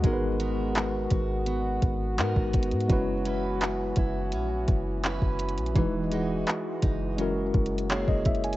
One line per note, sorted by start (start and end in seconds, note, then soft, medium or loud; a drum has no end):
0.00 1.07 G#1 loud
0.00 2.86 B2 medium
0.00 2.86 G#3 medium
0.00 2.13 G#3 medium
0.00 2.89 G#3 medium
0.00 0.39 B3 medium
0.00 2.86 B3 medium
0.00 2.14 B3 medium
0.00 0.40 F#4 medium
0.00 8.44 F#4 medium
0.00 0.40 A#4 medium
0.00 kick loud
0.00 closed hi-hat medium
0.04 2.15 D#4 medium
0.04 2.15 F#4 medium
0.04 0.12 A#4 medium
0.13 2.19 B4 medium
0.40 1.47 B3 medium
0.40 1.11 F#4 medium
0.40 2.18 A#4 medium
0.40 closed hi-hat medium
0.75 clap loud
0.75 closed hi-hat medium
1.10 1.80 G#1 loud
1.10 2.19 F#4 medium
1.10 kick medium
1.10 closed hi-hat medium
1.46 2.18 B3 medium
1.46 closed hi-hat medium
1.82 2.20 G#1 loud
1.82 kick medium
1.82 closed hi-hat medium
2.18 2.35 G#2 loud
2.18 2.87 G#3 medium
2.18 3.25 B3 medium
2.18 2.90 B3 medium
2.18 2.90 D#4 medium
2.18 3.26 F#4 medium
2.18 2.90 F#4 medium
2.18 2.97 A#4 medium
2.18 2.91 A#4 medium
2.18 clap loud
2.18 closed hi-hat medium
2.36 2.74 G#1 loud
2.36 kick medium
2.53 kick loud
2.53 closed hi-hat medium
2.53 open hi-hat medium
2.63 closed hi-hat medium
2.71 2.89 G#2 loud
2.71 closed hi-hat soft
2.80 closed hi-hat soft
2.88 3.93 F#1 loud
2.88 8.44 E3 medium
2.88 5.79 F#3 medium
2.88 5.70 G#3 medium
2.88 5.72 B3 medium
2.88 5.71 C#4 medium
2.88 5.72 C#4 medium
2.88 5.72 E4 medium
2.88 5.72 F#4 medium
2.88 kick loud
2.88 closed hi-hat medium
2.93 5.73 B4 medium
3.25 4.32 C#4 medium
3.25 3.97 E4 medium
3.25 5.05 B4 medium
3.25 closed hi-hat medium
3.61 clap loud
3.61 closed hi-hat medium
3.96 4.35 F#1 loud
3.96 5.04 E4 medium
3.96 kick medium
3.96 closed hi-hat medium
4.32 4.67 A#1 loud
4.32 5.03 C#4 medium
4.32 closed hi-hat medium
4.68 5.20 F#1 loud
4.68 kick medium
4.68 closed hi-hat medium
5.04 5.83 C#4 medium
5.04 6.12 E4 medium
5.04 5.83 B4 medium
5.04 clap loud
5.04 closed hi-hat medium
5.22 5.59 F#1 loud
5.22 kick medium
5.39 closed hi-hat medium
5.39 open hi-hat medium
5.49 closed hi-hat medium
5.58 5.75 A#1 loud
5.58 closed hi-hat soft
5.66 closed hi-hat soft
5.74 6.44 E1 loud
5.74 7.18 E3 medium
5.74 5.81 G3 medium
5.74 8.44 G#3 medium
5.74 7.15 D#4 medium
5.74 7.16 E4 medium
5.74 7.16 F#4 medium
5.74 7.17 D#5 medium
5.74 kick loud
5.74 closed hi-hat medium
5.79 7.16 G#3 medium
5.79 7.17 B4 medium
6.11 7.89 G#3 medium
6.11 6.82 D#4 medium
6.11 7.91 F#4 medium
6.11 closed hi-hat medium
6.47 clap loud
6.47 closed hi-hat medium
6.82 7.51 F#1 loud
6.82 7.25 D#4 medium
6.82 kick medium
6.82 closed hi-hat medium
7.17 8.57 F#3 medium
7.17 8.57 G#3 medium
7.17 8.44 A#3 medium
7.17 8.57 C#4 medium
7.17 8.57 E4 medium
7.17 8.57 F#4 medium
7.17 closed hi-hat medium
7.21 8.57 A#4 medium
7.54 8.06 F#1 loud
7.54 kick medium
7.54 closed hi-hat soft
7.66 closed hi-hat soft
7.78 closed hi-hat medium
7.90 8.57 A#3 medium
7.90 8.57 E4 medium
7.90 8.57 G#4 medium
7.90 8.07 C#5 medium
7.90 clap loud
7.90 closed hi-hat medium
8.08 8.57 F#1 loud
8.08 8.25 D#5 medium
8.08 kick medium
8.25 8.43 E5 medium
8.25 kick loud
8.25 closed hi-hat soft
8.25 open hi-hat medium
8.35 closed hi-hat medium
8.44 8.57 G#5 medium
8.44 closed hi-hat medium
8.53 closed hi-hat medium